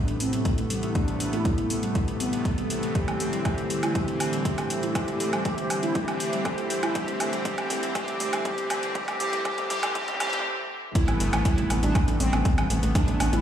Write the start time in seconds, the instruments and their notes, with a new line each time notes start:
Already playing: analog synth pad A2 C3 E3 A3 B3, synth drone A2 A3, ambient pad A3 D4 G4 E5
0.08 synth arpeggio sound E4, closed hi-hat
0.20 synth arpeggio sound A3, analog polysynth C4, open hi-hat
0.33 synth arpeggio sound G3, closed hi-hat
0.45 synth arpeggio sound E4, kick, closed hi-hat
0.58 synth arpeggio sound A3, closed hi-hat
0.70 analog synth pad C3 A3 B3, synth arpeggio sound G3, open hi-hat
0.83 synth arpeggio sound E4, closed hi-hat
0.95 analog synth pad C3 A3 B3, synth arpeggio sound A3, analog polysynth D4, kick, closed hi-hat
1.08 synth arpeggio sound G3, closed hi-hat
1.20 synth arpeggio sound E4, open hi-hat
1.33 synth arpeggio sound A3, analog polysynth E4, closed hi-hat
1.45 synth arpeggio sound G3, kick, closed hi-hat
1.58 synth arpeggio sound E4, closed hi-hat
1.70 synth arpeggio sound A3, open hi-hat
1.83 synth arpeggio sound G3, closed hi-hat
1.95 synth arpeggio sound E4, kick, closed hi-hat
2.08 synth arpeggio sound A3, closed hi-hat
2.20 analog synth pad C3 A3 B3, synth arpeggio sound G3, analog polysynth B3, open hi-hat
2.33 synth arpeggio sound E4, closed hi-hat
2.45 synth arpeggio sound A3, kick, closed hi-hat
2.58 synth arpeggio sound G3, closed hi-hat
2.70 analog synth pad C3 A3 B3, synth arpeggio sound E4, open hi-hat
2.83 synth arpeggio sound A3, closed hi-hat
2.95 analog synth pad D3 E3 C4, synth arpeggio sound G3, ambient pad A3, analog polysynth G4, kick, closed hi-hat, mid tom
3.08 synth arpeggio sound A3, closed hi-hat, low woodblock
3.20 synth arpeggio sound A3, open hi-hat
3.30 synth arpeggio sound G3, ambient pad D4, closed hi-hat
3.45 synth arpeggio sound A3, analog polysynth G4, kick, closed hi-hat, mid tom, low woodblock
3.58 synth arpeggio sound A3, closed hi-hat
3.70 synth arpeggio sound G3, open hi-hat
3.83 synth arpeggio sound A3, analog polysynth E4, closed hi-hat, low woodblock
3.95 analog synth pad D3 E3 C4, synth arpeggio sound G3, analog polysynth G4, ambient pad G4 E5, kick, closed hi-hat, mid tom
4.08 closed hi-hat
4.16 ambient pad C5
4.20 synth arpeggio sound A3, open hi-hat, low woodblock
4.33 synth arpeggio sound G3, closed hi-hat
4.45 synth arpeggio sound A3, analog polysynth G4, kick, closed hi-hat, mid tom
4.58 synth arpeggio sound A3, closed hi-hat, low woodblock
4.70 synth arpeggio sound G3, open hi-hat
4.83 synth arpeggio sound A3, analog polysynth E4, closed hi-hat
4.95 analog synth pad D3 E3 C4, synth arpeggio sound G3, analog polysynth G4, kick, closed hi-hat, mid tom, low woodblock
5.08 synth arpeggio sound A3, closed hi-hat
5.20 synth arpeggio sound A3, open hi-hat
5.33 synth arpeggio sound G3, closed hi-hat, low woodblock
5.45 synth arpeggio sound A3, analog polysynth G4, kick, closed hi-hat, mid tom
5.58 synth arpeggio sound A3, closed hi-hat
5.70 synth arpeggio sound G3, open hi-hat, low woodblock
5.83 synth arpeggio sound A3, analog polysynth E4, closed hi-hat
5.95 analog synth pad D3 E3 C4, synth arpeggio sound G3, analog polysynth G4, kick, closed hi-hat, mid tom
6.08 synth arpeggio sound A3, closed hi-hat, low woodblock
6.20 synth arpeggio sound A3, open hi-hat
6.33 synth arpeggio sound G3, closed hi-hat
6.45 synth arpeggio sound A3, analog polysynth G4, kick, closed hi-hat, mid tom, low woodblock
6.58 synth arpeggio sound A3, closed hi-hat
6.70 synth arpeggio sound G3, open hi-hat
6.83 synth arpeggio sound A3, analog polysynth E4, closed hi-hat, low woodblock
6.95 analog synth pad D3 E3 C4, synth arpeggio sound G3, analog polysynth G4, kick, closed hi-hat, mid tom
7.08 synth arpeggio sound A3, closed hi-hat
7.20 synth arpeggio sound A3, open hi-hat, mid tom, low woodblock
7.33 synth arpeggio sound G3, closed hi-hat
7.45 analog synth pad D3 E3 C4, synth arpeggio sound G3, analog polysynth G4, kick, closed hi-hat, mid tom
7.58 synth arpeggio sound A3, closed hi-hat, low woodblock
7.70 synth arpeggio sound A3, open hi-hat, mid tom
7.83 synth arpeggio sound G3, closed hi-hat
7.95 analog synth pad D3 E3 C4, synth arpeggio sound G3, analog polysynth G4, kick, closed hi-hat, mid tom, low woodblock
8.08 synth arpeggio sound A3, closed hi-hat
8.20 synth arpeggio sound A3, open hi-hat, mid tom
8.33 synth arpeggio sound G3, closed hi-hat, low woodblock
8.45 analog synth pad D3 E3 C4, synth arpeggio sound G3, analog polysynth G4, kick, closed hi-hat, mid tom
8.58 closed hi-hat
8.70 synth arpeggio sound A3, open hi-hat, mid tom, low woodblock
8.83 synth arpeggio sound G3, closed hi-hat
8.95 analog synth pad D3 E3 C4, synth arpeggio sound G3, analog polysynth G4, kick, closed hi-hat, mid tom
9.08 synth arpeggio sound A3, closed hi-hat, mid tom, low woodblock
9.20 analog synth pad D3 E3 C4, synth arpeggio sound G3, analog polysynth G4, open hi-hat, mid tom
9.33 synth arpeggio sound A3, closed hi-hat, mid tom
9.45 analog synth pad D3 E3 C4, synth arpeggio sound G3, analog polysynth G4, kick, closed hi-hat, mid tom, low woodblock
9.58 synth arpeggio sound A3, closed hi-hat, mid tom
9.70 analog synth pad D3 E3 C4, synth arpeggio sound G3, analog polysynth G4, open hi-hat, mid tom
9.83 synth arpeggio sound A3, closed hi-hat, mid tom, low woodblock
9.95 analog synth pad D3 E3 C4, synth arpeggio sound G3, analog polysynth G4, kick, closed hi-hat, mid tom
10.02 mid tom
10.08 synth arpeggio sound A3, closed hi-hat, mid tom
10.14 mid tom
10.20 analog synth pad D3 E3 C4, synth arpeggio sound G3, analog polysynth G4, open hi-hat, mid tom, low woodblock
10.27 mid tom
10.33 synth arpeggio sound A3, closed hi-hat, mid tom
10.39 mid tom
10.95 analog synth pad C3 A3 B3, synth arpeggio sound A3, analog polysynth E4, kick, closed hi-hat
11.08 analog synth bass A1, synth arpeggio sound G3, closed hi-hat, low woodblock
11.20 analog synth bass G1, synth arpeggio sound A3, open hi-hat
11.33 analog synth bass A1, synth arpeggio sound A3, closed hi-hat, low woodblock
11.45 synth arpeggio sound G3, analog polysynth E4, kick, closed hi-hat
11.58 analog synth bass A1, synth arpeggio sound A3, closed hi-hat
11.70 analog synth bass A1, synth arpeggio sound A3, open hi-hat, low woodblock
11.83 analog synth bass A1, synth arpeggio sound G3, analog polysynth D4, closed hi-hat
11.95 synth arpeggio sound A3, kick, closed hi-hat, low woodblock
12.08 analog synth bass A1, synth arpeggio sound A3, closed hi-hat
12.20 analog synth bass A1, synth arpeggio sound G3, analog polysynth C4, open hi-hat
12.33 analog synth bass A1, synth arpeggio sound A3, closed hi-hat, low woodblock
12.45 synth arpeggio sound A3, kick, closed hi-hat
12.58 analog synth bass A1, synth arpeggio sound G3, closed hi-hat, low woodblock
12.70 analog synth bass A1, analog synth pad C3 A3 B3, synth arpeggio sound A3, open hi-hat
12.83 analog synth bass A1, synth arpeggio sound A3, closed hi-hat
12.95 analog synth pad C3 A3 B3, synth arpeggio sound G3, analog polysynth D4, kick, closed hi-hat, low woodblock
13.08 analog synth bass A1, synth arpeggio sound A3, closed hi-hat
13.20 analog synth bass A1, synth arpeggio sound A3, open hi-hat, low woodblock
13.33 analog synth bass A1, synth arpeggio sound G3, analog polysynth E4, closed hi-hat